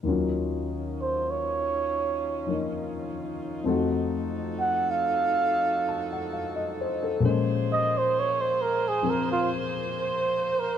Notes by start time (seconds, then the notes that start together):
0.03 D#2 D#3 F#3 C#4 D#4 F4
0.07 C#4 F4
1.01 C5
1.30 C#5
2.47 D#3 F3 A#3 D#4
3.64 F2 F3 A3 F#4 A4
3.68 D#4 F#4
4.60 F#5
4.91 F5
5.89 A5
6.13 F#5
6.33 F5
6.56 D#5
6.81 C5
7.03 A4
7.20 A#2 F3 G#3
7.24 A#3 C#4 G#4 C5
7.72 D#5
7.98 C5
8.19 C#5
8.41 C5
8.61 A#4
8.88 G#4
9.02 F3 C4 A#4
9.10 A#4
9.32 F4
10.01 C5
10.59 A#4